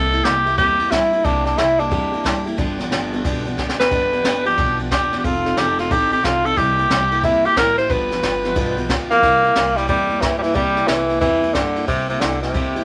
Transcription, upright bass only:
0, 0, Header, 1, 2, 480
1, 0, Start_track
1, 0, Tempo, 332410
1, 1799, Time_signature, 4, 2, 24, 8
1, 18541, End_track
2, 0, Start_track
2, 0, Title_t, "Upright bass"
2, 0, Program_c, 0, 32
2, 0, Note_on_c, 0, 36, 100
2, 341, Note_off_c, 0, 36, 0
2, 361, Note_on_c, 0, 36, 96
2, 824, Note_off_c, 0, 36, 0
2, 837, Note_on_c, 0, 40, 100
2, 1302, Note_off_c, 0, 40, 0
2, 1325, Note_on_c, 0, 43, 90
2, 1787, Note_off_c, 0, 43, 0
2, 1800, Note_on_c, 0, 36, 100
2, 2265, Note_off_c, 0, 36, 0
2, 2285, Note_on_c, 0, 36, 88
2, 2748, Note_off_c, 0, 36, 0
2, 2770, Note_on_c, 0, 40, 98
2, 3231, Note_off_c, 0, 40, 0
2, 3249, Note_on_c, 0, 43, 91
2, 3711, Note_off_c, 0, 43, 0
2, 3730, Note_on_c, 0, 31, 98
2, 4192, Note_off_c, 0, 31, 0
2, 4204, Note_on_c, 0, 31, 91
2, 4669, Note_off_c, 0, 31, 0
2, 4692, Note_on_c, 0, 35, 101
2, 5153, Note_off_c, 0, 35, 0
2, 5170, Note_on_c, 0, 38, 98
2, 5633, Note_off_c, 0, 38, 0
2, 5652, Note_on_c, 0, 31, 99
2, 6114, Note_off_c, 0, 31, 0
2, 6126, Note_on_c, 0, 31, 90
2, 6591, Note_off_c, 0, 31, 0
2, 6609, Note_on_c, 0, 35, 100
2, 7073, Note_off_c, 0, 35, 0
2, 7096, Note_on_c, 0, 28, 89
2, 7556, Note_off_c, 0, 28, 0
2, 7571, Note_on_c, 0, 29, 96
2, 8034, Note_off_c, 0, 29, 0
2, 8048, Note_on_c, 0, 29, 87
2, 8512, Note_off_c, 0, 29, 0
2, 8533, Note_on_c, 0, 33, 101
2, 8995, Note_off_c, 0, 33, 0
2, 9014, Note_on_c, 0, 36, 97
2, 9475, Note_off_c, 0, 36, 0
2, 9493, Note_on_c, 0, 36, 105
2, 9954, Note_off_c, 0, 36, 0
2, 9964, Note_on_c, 0, 36, 97
2, 10429, Note_off_c, 0, 36, 0
2, 10447, Note_on_c, 0, 40, 97
2, 10910, Note_off_c, 0, 40, 0
2, 10926, Note_on_c, 0, 33, 102
2, 11389, Note_off_c, 0, 33, 0
2, 11408, Note_on_c, 0, 31, 100
2, 11870, Note_off_c, 0, 31, 0
2, 11882, Note_on_c, 0, 31, 97
2, 12346, Note_off_c, 0, 31, 0
2, 12362, Note_on_c, 0, 35, 90
2, 12826, Note_off_c, 0, 35, 0
2, 12843, Note_on_c, 0, 38, 87
2, 13306, Note_off_c, 0, 38, 0
2, 13325, Note_on_c, 0, 36, 97
2, 13787, Note_off_c, 0, 36, 0
2, 13799, Note_on_c, 0, 36, 87
2, 14264, Note_off_c, 0, 36, 0
2, 14282, Note_on_c, 0, 40, 91
2, 14745, Note_off_c, 0, 40, 0
2, 14756, Note_on_c, 0, 43, 98
2, 15221, Note_off_c, 0, 43, 0
2, 15240, Note_on_c, 0, 36, 92
2, 15703, Note_off_c, 0, 36, 0
2, 15718, Note_on_c, 0, 36, 85
2, 16181, Note_off_c, 0, 36, 0
2, 16197, Note_on_c, 0, 40, 94
2, 16661, Note_off_c, 0, 40, 0
2, 16678, Note_on_c, 0, 43, 97
2, 17141, Note_off_c, 0, 43, 0
2, 17151, Note_on_c, 0, 36, 96
2, 17617, Note_off_c, 0, 36, 0
2, 17638, Note_on_c, 0, 36, 90
2, 18100, Note_off_c, 0, 36, 0
2, 18115, Note_on_c, 0, 40, 93
2, 18541, Note_off_c, 0, 40, 0
2, 18541, End_track
0, 0, End_of_file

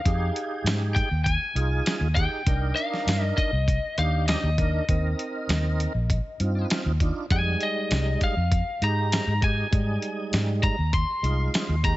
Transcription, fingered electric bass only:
0, 0, Header, 1, 2, 480
1, 0, Start_track
1, 0, Tempo, 604839
1, 40, Time_signature, 4, 2, 24, 8
1, 9498, End_track
2, 0, Start_track
2, 0, Title_t, "Fingered electric bass"
2, 0, Program_c, 0, 33
2, 42, Note_on_c, 0, 41, 91
2, 232, Note_off_c, 0, 41, 0
2, 508, Note_on_c, 0, 44, 85
2, 802, Note_off_c, 0, 44, 0
2, 882, Note_on_c, 0, 39, 79
2, 1073, Note_off_c, 0, 39, 0
2, 1231, Note_on_c, 0, 36, 86
2, 1424, Note_off_c, 0, 36, 0
2, 1592, Note_on_c, 0, 39, 84
2, 1787, Note_off_c, 0, 39, 0
2, 1956, Note_on_c, 0, 36, 89
2, 2147, Note_off_c, 0, 36, 0
2, 2435, Note_on_c, 0, 43, 96
2, 2626, Note_off_c, 0, 43, 0
2, 2797, Note_on_c, 0, 36, 96
2, 2990, Note_off_c, 0, 36, 0
2, 3158, Note_on_c, 0, 39, 98
2, 3447, Note_off_c, 0, 39, 0
2, 3519, Note_on_c, 0, 39, 99
2, 3801, Note_off_c, 0, 39, 0
2, 3879, Note_on_c, 0, 39, 79
2, 4068, Note_off_c, 0, 39, 0
2, 4355, Note_on_c, 0, 39, 94
2, 4645, Note_off_c, 0, 39, 0
2, 4718, Note_on_c, 0, 34, 75
2, 4910, Note_off_c, 0, 34, 0
2, 5078, Note_on_c, 0, 43, 77
2, 5268, Note_off_c, 0, 43, 0
2, 5443, Note_on_c, 0, 39, 82
2, 5633, Note_off_c, 0, 39, 0
2, 5796, Note_on_c, 0, 41, 80
2, 5987, Note_off_c, 0, 41, 0
2, 6277, Note_on_c, 0, 36, 84
2, 6467, Note_off_c, 0, 36, 0
2, 6641, Note_on_c, 0, 41, 88
2, 6831, Note_off_c, 0, 41, 0
2, 6996, Note_on_c, 0, 44, 93
2, 7286, Note_off_c, 0, 44, 0
2, 7357, Note_on_c, 0, 44, 94
2, 7641, Note_off_c, 0, 44, 0
2, 7718, Note_on_c, 0, 44, 90
2, 7908, Note_off_c, 0, 44, 0
2, 8199, Note_on_c, 0, 44, 78
2, 8488, Note_off_c, 0, 44, 0
2, 8559, Note_on_c, 0, 39, 76
2, 8751, Note_off_c, 0, 39, 0
2, 8912, Note_on_c, 0, 36, 91
2, 9104, Note_off_c, 0, 36, 0
2, 9276, Note_on_c, 0, 39, 82
2, 9469, Note_off_c, 0, 39, 0
2, 9498, End_track
0, 0, End_of_file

